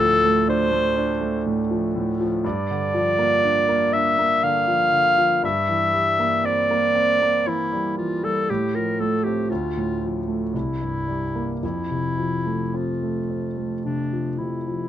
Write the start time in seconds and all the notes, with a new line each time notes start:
Already playing: D2 A2 A4
0.00 F3
0.25 A3
0.48 D4 C5
0.71 A3
0.97 D4
1.21 A3
1.46 A2
1.71 F3
1.96 A2
2.20 F3
2.44 G2 D5
2.70 D3
2.94 F3
3.19 A#3
3.44 D4
3.69 A#3
3.93 D4 E5
4.19 A#3
4.43 D3 F5
4.68 F3
4.92 D3
5.18 F3
5.43 G2 E5
5.68 E3
5.94 G3
6.20 A#3
6.44 C4 D5
6.71 A#3
6.95 C4
7.22 A#3
7.46 E3 E4
7.72 G3
7.98 E3 F4
8.23 G3 A4
8.50 A2 G4
8.75 F3 A#4
9.00 A3 A4
9.24 C4 G4
9.50 D2 F4
9.77 A2
10.02 F3
10.28 A3
10.53 C2 E4
10.81 G2
11.08 G3
11.35 A#3
11.63 F2 E4
11.90 C3
12.18 F3
12.46 A3
12.74 C4 F4
13.03 A3
13.30 C4
13.57 A3
13.85 C3 D4
14.13 F3
14.38 C3 E4
14.67 F3